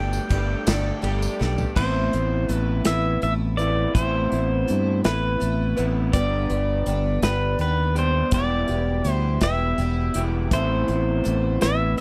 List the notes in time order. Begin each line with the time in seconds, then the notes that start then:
Already playing: G1 G3 A3 D4 G4 A4 G5 D6
0.13 tambourine
0.29 G1 G3 A3 D4 G4 A4, kick, ride
0.67 G1 G2 D3 G3 A3 D4 G4 A4, snare, ride, tambourine
1.02 G1 G3 A3 D4 G4 A4, ride
1.22 tambourine
1.39 B1 G3 A3 D4 G4 A4, snare
1.58 floor tom, tambourine
1.76 A1 A2 E3 A3 B3 C4 E4 C5, kick, crash
2.13 A1 A3 E4, closed hi-hat
2.49 A1 A3 E4 B4, closed hi-hat
2.85 A1 A2 E3 A3 E4 B4 E5, snare, closed hi-hat
3.22 A1 A3 E4 B4 E5, closed hi-hat
3.57 A2 E3 A3 B3 C4 E4 B4 D5, closed hi-hat
3.95 A1 A2 E3 A3 B3 C4 E4 C5, kick, closed hi-hat
4.32 A1 A3 E4, closed hi-hat
4.68 G2 A3 E4, closed hi-hat
5.04 A1 A2 E3 A3 E4 B4, snare, closed hi-hat
5.40 A1 A3 E4 B4, closed hi-hat
5.77 A1 A2 E3 A3 B3 C4 E4 B4, closed hi-hat
6.13 G1 G2 D3 G3 B3 D4 G4 B4 D5, kick, closed hi-hat
6.50 G1 G3 B3 D4 B4, closed hi-hat
6.86 G1 G3 B3 D4 B4, closed hi-hat
7.22 G1 G2 D3 G3 B3 D4 B4, snare, closed hi-hat
7.58 D#2 G3 B3 D4 B4, closed hi-hat
7.95 G2 D3 G3 B3 D4 G4 C5, closed hi-hat
8.31 E1 E2 B2 E3 G3 B3 E4 G4 D5, kick, closed hi-hat
8.68 E1 E4 G4, closed hi-hat
8.72 B3
9.04 D2 G3 B3 E4 G4, closed hi-hat
9.12 C5
9.41 E1 E3 G3 B3 E4 G4 E5, kick, snare, closed hi-hat
9.78 E1 G3 B3 E4 G4, closed hi-hat
10.14 E1 E2 B2 E3 G3 B3 E4 G4, closed hi-hat
10.51 A1 A2 E3 A3 B3 C4 E4 C5, kick, closed hi-hat
10.88 A1 A3 E4, closed hi-hat
11.24 A1 A3 E4, closed hi-hat
11.61 A1 A2 E3 A3 E4 B4 E5, snare, closed hi-hat
11.97 A3, closed hi-hat